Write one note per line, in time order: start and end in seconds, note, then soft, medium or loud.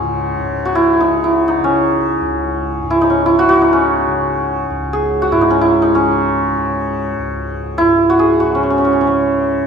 0.00 2.21 C#2 medium
0.00 0.37 G#2 medium
0.00 0.03 C#3 medium
0.00 0.97 C#3 medium
0.00 1.01 B3 medium
0.00 1.64 C#4 medium
0.00 0.81 D#4 medium
0.00 0.65 F#4 medium
0.37 2.82 G#2 medium
0.65 3.39 F#4 medium
0.75 1.06 E4 medium
0.97 1.59 C#3 soft
0.97 1.30 D#4 medium
1.24 1.54 E4 medium
1.48 2.97 D#4 medium
1.59 3.46 C#3 soft
1.64 3.10 C#4 medium
2.21 4.70 C#2 medium
2.82 5.32 G#2 soft
2.91 3.07 E4 medium
3.01 3.32 D#4 medium
3.10 3.72 C#4 medium
3.26 3.68 E4 medium
3.39 3.48 F#4 medium
3.46 4.08 C#3 medium
3.46 5.21 F#4 medium
3.62 5.38 D#4 medium
3.73 5.50 C#4 medium
4.08 5.95 C#3 medium
4.70 7.18 C#2 medium
4.93 7.96 G#4 medium
5.22 8.09 F#4 medium
5.32 7.80 G#2 medium
5.32 5.47 E4 medium
5.41 5.67 D#4 medium
5.50 5.95 C#4 medium
5.61 5.88 E4 medium
5.82 7.84 D#4 medium
5.95 6.57 C#3 medium
5.95 8.54 C#4 medium
6.57 8.43 C#3 medium
7.18 9.65 C#2 medium
7.78 9.67 G#2 medium
7.78 9.67 E4 medium
8.10 8.40 F#4 medium
8.19 9.67 G#4 medium
8.40 9.04 C#3 soft
8.40 9.67 F#4 medium
8.55 8.63 C#4 medium
8.63 8.70 C#4 soft
8.70 8.77 C#4 medium
8.78 8.84 C#4 soft
8.85 8.92 C#4 medium
8.93 9.00 C#4 soft
9.01 9.67 C#3 medium
9.01 9.07 C#4 medium
9.07 9.67 C#4 soft